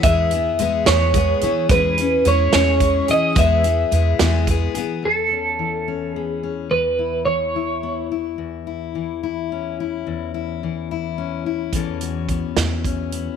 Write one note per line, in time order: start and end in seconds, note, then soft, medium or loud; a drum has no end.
0.03 0.49 E2 medium
0.03 0.31 E3 medium
0.03 0.32 G#3 medium
0.03 0.32 B3 medium
0.03 0.32 E4 medium
0.03 0.31 G#4 medium
0.03 0.83 E5 medium
0.03 kick loud
0.03 closed hi-hat medium
0.31 0.60 E4 soft
0.31 0.59 G#4 soft
0.31 closed hi-hat medium
0.35 0.60 B3 soft
0.59 0.82 E2 medium
0.59 0.87 G#3 medium
0.59 0.88 B3 medium
0.59 0.87 E4 medium
0.59 0.86 G#4 medium
0.59 closed hi-hat medium
0.86 1.32 E2 loud
0.86 1.16 E3 medium
0.86 1.13 G#3 medium
0.86 1.14 B3 medium
0.86 1.15 E4 medium
0.86 1.15 G#4 medium
0.86 1.66 C#5 medium
0.86 snare loud
0.86 closed hi-hat medium
1.14 1.42 G#3 medium
1.14 1.43 B3 medium
1.14 1.42 E4 medium
1.14 1.41 G#4 medium
1.14 kick medium
1.14 closed hi-hat medium
1.41 1.65 E3 medium
1.41 1.71 B3 soft
1.41 1.70 E4 soft
1.41 1.70 G#4 soft
1.41 closed hi-hat medium
1.69 2.15 E2 medium
1.69 1.98 E3 medium
1.69 1.98 G#3 medium
1.69 1.98 C#4 medium
1.69 1.97 E4 medium
1.69 1.96 G#4 medium
1.69 2.28 B4 medium
1.69 kick loud
1.69 closed hi-hat medium
1.97 2.25 C#4 soft
1.97 2.26 E4 medium
1.97 2.25 G#4 medium
1.97 closed hi-hat medium
2.25 2.48 E2 loud
2.25 2.53 G#3 medium
2.25 2.53 C#4 medium
2.25 2.52 E4 medium
2.25 2.51 G#4 medium
2.25 2.53 C#5 medium
2.25 closed hi-hat medium
2.52 2.99 E2 loud
2.52 2.82 E3 medium
2.52 2.79 G#3 medium
2.52 2.81 C#4 medium
2.52 2.81 E4 medium
2.52 2.80 G#4 medium
2.52 3.11 C#5 medium
2.52 snare loud
2.52 closed hi-hat medium
2.80 3.08 G#3 medium
2.80 3.09 C#4 medium
2.80 3.09 E4 medium
2.80 3.07 G#4 medium
2.80 kick medium
2.80 closed hi-hat medium
3.08 3.31 E3 medium
3.08 3.37 C#4 soft
3.08 3.36 E4 soft
3.08 3.36 G#4 soft
3.08 3.38 D#5 medium
3.08 closed hi-hat medium
3.36 3.82 E2 medium
3.36 3.64 E3 medium
3.36 3.64 G#3 medium
3.36 3.64 B3 medium
3.36 3.64 E4 medium
3.36 3.62 G#4 medium
3.36 4.45 E5 medium
3.36 kick loud
3.36 closed hi-hat medium
3.63 3.91 B3 soft
3.63 3.92 E4 soft
3.63 3.91 G#4 soft
3.63 closed hi-hat medium
3.92 4.15 E2 medium
3.92 4.19 G#3 medium
3.92 4.20 B3 medium
3.92 4.19 E4 medium
3.92 4.19 G#4 medium
3.92 closed hi-hat medium
4.19 4.66 E2 medium
4.19 4.49 E3 medium
4.19 4.47 G#3 medium
4.19 4.48 B3 medium
4.19 4.48 E4 medium
4.19 4.47 G#4 medium
4.19 snare loud
4.19 closed hi-hat medium
4.47 4.75 G#3 medium
4.47 4.76 B3 medium
4.47 4.76 E4 medium
4.47 4.73 G#4 medium
4.47 kick medium
4.47 closed hi-hat medium
4.74 4.98 E3 medium
4.74 5.04 B3 soft
4.74 5.04 E4 medium
4.74 5.03 G#4 soft
4.74 closed hi-hat medium
5.03 6.70 E2 soft
5.03 6.16 A4 medium
5.31 5.87 C#4 soft
5.59 7.25 E3 soft
5.88 6.42 C#4 soft
6.16 6.68 B3 soft
6.16 6.77 G#4 medium
6.43 6.67 C#4 soft
6.71 8.38 E2 medium
6.71 7.25 B4 medium
6.99 7.55 E4 soft
7.26 8.95 E3 soft
7.26 8.06 C#5 medium
7.56 8.11 E4 soft
7.83 8.35 B3 soft
8.12 8.67 E4 soft
8.38 10.06 E2 soft
8.67 9.23 E4 soft
8.95 10.63 E3 soft
9.23 9.80 E4 medium
9.52 11.18 C#4 soft
9.80 10.33 E4 soft
10.07 11.73 E2 medium
10.34 10.90 E4 soft
10.63 11.71 E3 soft
10.91 11.45 E4 medium
11.18 11.70 C#4 soft
11.46 11.76 E4 soft
11.73 12.42 E2 medium
11.73 13.36 E2 medium
11.73 12.58 E3 soft
11.73 12.30 B3 soft
11.73 12.85 C#4 soft
11.73 12.02 A4 medium
11.73 kick soft
11.73 closed hi-hat medium
12.01 13.36 F#4 soft
12.01 closed hi-hat medium
12.29 13.13 B3 soft
12.29 kick soft
12.29 closed hi-hat soft
12.56 13.26 E2 medium
12.56 13.36 E3 medium
12.56 snare medium
12.56 closed hi-hat medium
12.84 13.36 C#4 soft
12.84 kick soft
12.84 closed hi-hat soft
13.12 13.36 B3 medium
13.12 closed hi-hat medium